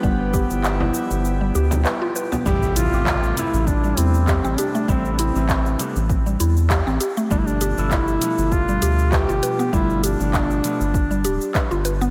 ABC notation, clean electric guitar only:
X:1
M:4/4
L:1/16
Q:"Swing 16ths" 1/4=99
K:Am
V:1 name="Clean electric guitar" clef=bass
z16 | [C,G,A,B,E]3 [C,G,A,B,G]3 [C,G,A,EB]8- [C,G,A,EB]2 | [C,G,A,B,E]3 [C,G,A,EB]3 [C,G,A,B,D] z8 z | [B,,F,G,A,D]3 [B,,F,G,A,E]3 [B,,F,G,A,D]8- [B,,F,G,A,D]2 |
[B,,F,G,A,D]3 [B,,F,G,A,D]3 [B,,F,G,A,B,] z8 z |]